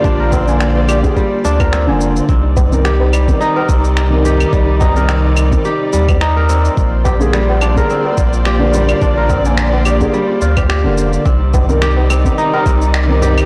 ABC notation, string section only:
X:1
M:4/4
L:1/8
Q:"Swing 16ths" 1/4=107
K:Cm
V:1 name="String section"
[B,Fcd]8 | [C,G,Ed]8- | [C,G,Ed]8 | [B,Fcd]8- |
[B,Fcd]8 | [C,G,Ed]8 |]